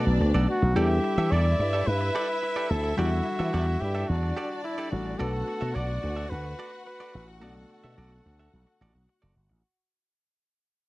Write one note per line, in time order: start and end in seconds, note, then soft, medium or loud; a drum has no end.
0.00 0.78 A3 medium
0.00 0.78 B3 medium
0.00 0.48 D4 medium
0.00 0.75 D4 medium
0.00 0.78 F#4 medium
0.00 0.22 A4 loud
0.00 0.79 B4 medium
0.00 0.48 D5 medium
0.06 0.18 B1 medium
0.06 muted clean electric guitar stroke medium
0.20 0.31 D2 loud
0.20 muted clean electric guitar stroke medium
0.34 0.45 B1 medium
0.34 0.47 F#4 medium
0.34 0.48 A4 medium
0.34 0.48 D5 medium
0.48 0.78 F#4 loud
0.48 muted clean electric guitar stroke soft
0.62 0.73 B1 loud
0.62 muted clean electric guitar stroke soft
0.75 0.98 E2 loud
0.75 2.93 G3 medium
0.75 2.94 D4 medium
0.75 2.94 E4 medium
0.75 4.06 E4 medium
0.75 0.91 G4 loud
0.75 1.33 G4 loud
0.75 2.94 G4 medium
0.75 0.90 A4 medium
0.75 2.95 A4 medium
0.75 0.89 D5 medium
0.75 4.06 E5 medium
0.90 muted clean electric guitar stroke soft
1.04 muted clean electric guitar stroke soft
1.18 1.29 E3 loud
1.18 1.30 G4 medium
1.18 1.30 A4 medium
1.18 1.30 E5 medium
1.32 1.54 E2 medium
1.32 1.47 G4 medium
1.32 1.46 A4 medium
1.32 1.88 D5 loud
1.32 1.45 D5 medium
1.46 muted clean electric guitar stroke soft
1.59 1.81 G2 medium
1.59 muted clean electric guitar stroke soft
1.73 1.85 G4 medium
1.73 1.85 A4 medium
1.73 1.85 E5 medium
1.87 2.09 G2 medium
1.87 2.72 B4 loud
2.01 muted clean electric guitar stroke soft
2.15 2.30 G4 medium
2.15 2.28 A4 medium
2.15 2.28 D5 loud
2.29 muted clean electric guitar stroke medium
2.43 muted clean electric guitar stroke soft
2.56 2.69 G4 medium
2.56 2.69 A4 medium
2.56 2.70 D5 medium
2.70 2.92 D2 medium
2.70 2.97 A4 loud
2.84 muted clean electric guitar stroke soft
2.97 3.20 E2 loud
2.97 4.88 G3 medium
2.97 4.88 D4 medium
2.97 4.88 E4 medium
2.97 3.82 F#4 loud
2.97 4.89 F#4 medium
2.97 3.13 G4 medium
2.97 3.11 A4 medium
2.97 4.89 A4 medium
2.97 3.10 D5 loud
3.25 muted clean electric guitar stroke soft
3.39 3.51 E3 loud
3.39 3.52 G4 medium
3.39 3.51 A4 medium
3.39 3.51 E5 medium
3.53 3.76 E2 loud
3.53 3.68 G4 medium
3.53 3.66 A4 medium
3.53 3.66 D5 loud
3.80 4.03 G2 medium
3.80 4.10 G4 medium
3.80 muted clean electric guitar stroke soft
3.95 4.07 G4 medium
3.95 4.07 A4 medium
3.95 4.07 E5 medium
4.08 4.31 E2 loud
4.08 5.18 D4 medium
4.08 4.63 F#4 medium
4.08 5.18 D5 medium
4.23 muted clean electric guitar stroke soft
4.36 4.51 G4 medium
4.36 4.50 A4 loud
4.36 4.49 D5 loud
4.51 muted clean electric guitar stroke soft
4.64 4.90 E4 loud
4.64 muted clean electric guitar stroke soft
4.78 4.91 G4 medium
4.78 4.91 A4 medium
4.78 4.92 D5 medium
4.91 5.14 A1 medium
4.91 5.20 G3 medium
4.91 5.19 D4 soft
4.91 5.20 E4 soft
4.91 5.20 F#4 medium
4.91 5.20 F#4 soft
4.91 5.20 A4 medium
4.91 muted clean electric guitar stroke soft
5.06 muted clean electric guitar stroke soft
5.19 5.42 B1 loud
5.19 7.37 A3 medium
5.19 7.38 B3 medium
5.19 7.38 D4 medium
5.19 5.35 F#4 medium
5.19 7.38 F#4 medium
5.19 9.60 F#4 medium
5.19 5.76 A4 loud
5.19 5.33 A4 loud
5.19 7.39 B4 medium
5.19 5.32 D5 loud
5.19 9.60 F#5 medium
5.34 muted clean electric guitar stroke soft
5.48 muted clean electric guitar stroke soft
5.61 5.73 B2 loud
5.61 5.73 F#4 medium
5.61 5.73 A4 medium
5.61 5.73 E5 medium
5.75 5.97 B1 loud
5.75 5.90 F#4 medium
5.75 5.89 A4 medium
5.75 6.31 D5 loud
5.75 5.88 D5 medium
5.89 muted clean electric guitar stroke soft
6.03 6.25 D2 medium
6.03 muted clean electric guitar stroke soft
6.16 6.29 F#4 medium
6.16 6.28 A4 medium
6.16 6.28 E5 medium
6.30 6.53 D2 loud
6.30 6.85 B4 loud
6.44 muted clean electric guitar stroke soft
6.59 6.74 F#4 medium
6.59 6.72 A4 medium
6.59 6.72 D5 loud
6.73 muted clean electric guitar stroke medium
6.86 7.26 B4 loud
6.86 muted clean electric guitar stroke medium
7.00 7.13 F#4 medium
7.00 7.13 A4 medium
7.00 7.13 D5 medium
7.15 7.42 A1 medium
7.28 muted clean electric guitar stroke soft
7.41 7.64 B1 loud
7.41 9.59 A3 medium
7.41 9.60 B3 medium
7.41 9.60 D4 medium
7.41 7.56 F#4 medium
7.41 9.60 F#4 medium
7.41 9.04 A4 medium
7.41 7.56 A4 medium
7.41 7.55 D5 medium
7.41 9.61 D5 medium
7.57 muted clean electric guitar stroke soft
7.70 muted clean electric guitar stroke soft
7.84 7.95 B2 medium
7.84 7.96 F#4 soft
7.84 7.96 A4 medium
7.84 7.95 E5 medium
7.98 8.19 B1 medium
7.98 8.12 F#4 medium
7.98 8.11 A4 medium
7.98 8.11 D5 medium
8.12 muted clean electric guitar stroke soft
8.26 8.47 D2 medium
8.26 muted clean electric guitar stroke soft
8.39 8.51 F#4 medium
8.39 8.51 A4 medium
8.39 8.51 E5 medium
8.53 8.64 B1 loud
8.67 muted clean electric guitar stroke soft
8.81 8.92 A1 medium
8.81 8.96 F#4 medium
8.81 8.94 A4 loud
8.81 8.93 D5 medium
8.95 9.06 B1 medium
8.95 muted clean electric guitar stroke soft
9.09 muted clean electric guitar stroke soft
9.22 9.34 F#1 medium
9.22 9.35 F#4 medium
9.22 9.35 A4 medium
9.22 9.36 D5 medium
9.36 9.47 G1 medium
9.49 9.61 A1 medium
9.49 muted clean electric guitar stroke medium